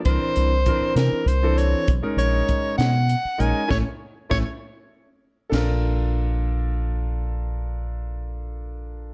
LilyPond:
<<
  \new Staff \with { instrumentName = "Soprano saxophone" } { \time 6/8 \key bes \major \tempo 4. = 66 c''4. bes'8 c''8 des''8 | r8 cis''4 fis''4 gis''8 | cis''8 r8 cis''8 r4. | r2. |
r2. | }
  \new Staff \with { instrumentName = "Grand piano" } { \time 6/8 \key bes \major <e c' d' bes'>8. r16 <e c' d' bes'>4 r16 <e c' d' a'>8. | r16 <gis cis' dis' ais'>4. r8. <gis cis' dis' ais'>16 r16 | <a cis' e'>8 r8 <a cis' e'>8 r4. | <d' f' a' bes'>2.~ |
<d' f' a' bes'>2. | }
  \new Staff \with { instrumentName = "Fingered electric bass" } { \clef bass \time 6/8 \key bes \major c,16 r16 c,8. r16 c16 r16 c,4 | b,,16 r16 ais,,8 r8 b,8. r16 ais,,16 r16 | a,,8 r8 a,,8 r4. | bes,,2.~ |
bes,,2. | }
  \new DrumStaff \with { instrumentName = "Drums" } \drummode { \time 6/8 <hh bd>8 hh8 <hh bd>8 <hh sn>8 hh8 hh8 | <hh bd>8 hh8 <hh bd>8 <hh sn>8 hh8 hh8 | <bd sn>4 <bd sn>8 r4. | <cymc sn>4. r4. |
r4. r4. | }
>>